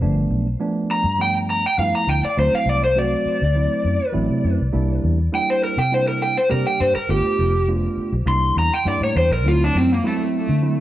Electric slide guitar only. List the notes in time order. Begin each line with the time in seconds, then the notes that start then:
0.91 A#5
1.21 G5
1.50 A#5
1.66 G5
1.79 F5
1.95 A#5
2.09 G5
2.25 D5
2.39 C5
2.55 F5
2.69 D5
2.84 C5
2.99 D5
5.35 G5
5.50 C5
5.64 A#4
5.78 G5
5.94 C5
6.08 A#4
6.22 G5
6.38 C5
6.51 A#4
6.67 G5
6.80 C5
6.95 A#4
7.10 G4
8.28 C6
8.59 A#5
8.74 G5
8.88 D5
9.04 C#5
9.17 C5
9.33 A#4
9.48 F4
9.64 D4
9.78 C4
9.94 A#3
10.07 A3